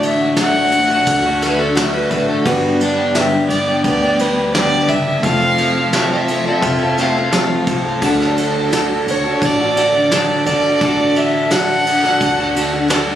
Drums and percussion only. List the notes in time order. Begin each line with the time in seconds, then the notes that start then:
0.03 ride
0.36 snare, ride
0.72 ride
1.06 kick, ride
1.42 snare, ride
1.77 snare, ride
2.11 kick, ride
2.45 kick, crash
2.80 ride
3.15 snare, ride
3.50 ride
3.84 kick, ride
4.19 ride
4.54 snare, ride
4.89 kick, ride
5.23 kick, ride
5.58 ride
5.93 snare, ride
6.28 ride
6.62 kick, ride
6.98 snare, ride
7.32 snare, ride
7.67 kick, ride
8.02 kick, crash
8.21 snare
8.37 ride
8.72 snare, ride
9.08 ride
9.42 kick, ride
9.77 ride
10.11 snare, ride
10.46 kick, ride
10.81 kick, ride
11.16 ride
11.51 snare, ride
11.86 ride
12.04 snare
12.21 kick, ride
12.56 ride
12.90 snare, ride